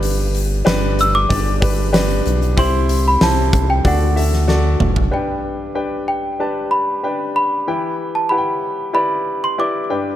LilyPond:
<<
  \new Staff \with { instrumentName = "Celesta" } { \time 4/4 \key g \major \tempo 4 = 94 r4. e'''16 d'''2~ d'''16 | c'''8. b''16 a''8. g''16 fis''4. r8 | g''4. g''4 b''4 b''8~ | b''8. a''16 b''4 b''8. c'''16 d'''8. r16 | }
  \new Staff \with { instrumentName = "Grand piano" } { \time 4/4 \key g \major <d' g' b'>4 <d' g' b'>4 <d' g' d''>8 <d' g' b'>8 <d' g' b'>4 | <e' g' c''>4 <e' g' c''>4 <fis' a' d''>8 <fis' a' e''>8 <fis' a' d''>4 | <d' g' b' g''>4 <d' g' b' g''>4 <d' g' b' a''>4 <d' g' b' g''>4 | <e' g' b' g''>4 <e' g' b' fis'' g''>4 <e' g' b' d''>4 <e' g' b' d''>8 <d' g' b' g''>8 | }
  \new Staff \with { instrumentName = "Grand piano" } { \clef bass \time 4/4 \key g \major g,4 r2. | c4. r8 d4. r8 | g,4. r2 r8 | e4. r2 g,8 | }
  \new Staff \with { instrumentName = "Analog synth bass" } { \clef bass \time 4/4 \key g \major g,,4 g,,4 g,,4. b,,8 | c,4 c,4 d,4. fis,,8 | r1 | r1 | }
  \new DrumStaff \with { instrumentName = "Drums" } \drummode { \time 4/4 <hho hhp>8 <hho hhp>8 <hho hhp sn>8 <hho hhp>8 <hho hhp bd>8 <hho hhp bd>8 <hho hhp sn>16 hho16 <hho hhp>16 hhp16 | <hho hhp bd>8 <hho hhp>8 <hho hhp sn>8 <hho hhp bd>8 <hho hhp bd>8 <hho hhp>16 sn16 sn8 toml16 tomfh16 | r4 r4 r4 r4 | r4 r4 r4 r4 | }
>>